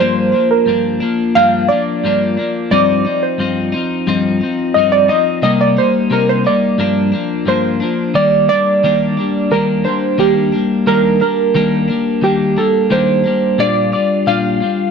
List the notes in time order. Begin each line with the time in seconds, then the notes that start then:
0.00 G2 F3 A#3 D4 C5
0.32 F3 A#3 D4
0.51 A#4
0.66 G2 F3 A#3 D4
1.00 F3 A#3 D4
1.35 G2 F3 A#3 D4 F5
1.68 A#3 D4 D5
1.73 F3
2.04 G2 F3 A#3 D4
2.37 F3 A#3 D4
2.71 G2 F3 C4 D#4 D5
3.05 F3 C4 D#4
3.23 C5
3.38 G2 F3 C4 D#4
3.72 F3 C4 D#4
4.07 G2 F3 C4 D#4
4.41 F3 C4 D#4
4.74 G2 F3 C4 D#4 D#5
4.92 D5
5.08 F3 C4 D#4 D#5
5.42 C3 G3 A#3 D#4 D#5
5.61 D5
5.77 G3 A#3 D#4 C5
6.10 C3 G3 A#3 D#4 A#4
6.29 C5
6.44 G3 A#3 D#4 D5
6.78 G2 F3 A#3 D4
7.12 F3 A#3 D4
7.46 G2 F3 A#3 D4 C5
7.80 F3 A#3 D4
8.14 D#3 G3 A#3 D4 D5
8.48 G3 A#3 D4 D5
8.83 D#3 G3 A#3 D4
9.17 G3 A#3 D4
9.51 D#3 G3 A#3 D4 A#4
9.84 G3 A#3 D4 C5
10.18 D#3 G3 A#3 D4 G4
10.52 G3 A#3 D4
10.87 D#3 G3 A#3 D4 A#4
11.20 G3 A#3 D4 A#4
11.54 D#3 G3 A#3 D4
11.88 G3 A#3 D4
12.22 D#3 G3 A#3 D4 G4
12.57 G3 A#3 D4 A4
12.90 D#3 G3 A#3 D4 C5
13.24 G3 A#3 D4
13.58 A#2 G3 D4 F4 D5
13.92 G3 D4 F4 D5
14.26 A#2 G3 D4 F4 F5
14.60 G3 D4 F4